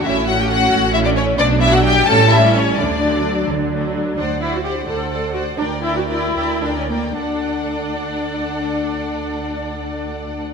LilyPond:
<<
  \new Staff \with { instrumentName = "Violin section" } { \time 6/8 \key d \major \tempo 4. = 85 e''8 fis''16 g''16 fis''4 e''16 d''16 cis''8 | d''8 e''16 fis''16 g''8 a''8 e''8 cis''8 | d''4. r4. | fis''8 fis''8 fis''8 fis''8 fis''8 fis''8 |
g''8 g''8 g''8 g''8 g''8 g''8 | fis''2.~ | fis''2. | }
  \new Staff \with { instrumentName = "Violin section" } { \time 6/8 \key d \major e'8 fis'16 g'16 fis'4 e'16 d'16 cis'8 | d'8 e'16 fis'16 g'8 a'8 e'8 cis'8 | d'4. r4. | <c'' d''>8 <c'' d''>8 <c'' d''>8 <c'' d''>8 <c'' d''>8 <c'' d''>8 |
<bes' d''>8 <bes' d''>8 <bes' d''>8 <bes' d''>8 <bes' d''>8 <bes' d''>8 | <a' d''>2.~ | <a' d''>2. | }
  \new Staff \with { instrumentName = "Viola section" } { \time 6/8 \key d \major <a cis'>8 <a cis'>4. <a cis'>4 | r8 <fis d'>4 <g cis'>8 <g cis'>4 | r8 <fis d'>4. <fis d'>4 | d'8 e'16 fis'16 g'8 a'4 fis'8 |
d'8 e'16 fis'16 e'4 d'16 cis'16 bes8 | d'2.~ | d'2. | }
  \new Staff \with { instrumentName = "Cello section" } { \clef bass \time 6/8 \key d \major a,4. a,4. | b,4. a,4. | d4. d4. | d,4. d,4. |
d,4. d,4. | d,2.~ | d,2. | }
  \new Staff \with { instrumentName = "Double bass section" } { \clef bass \time 6/8 \key d \major a,,4. a,,4. | b,,4. a,,4. | d,4. d,4. | d,4. d,4. |
d,4. d,4. | d,2.~ | d,2. | }
>>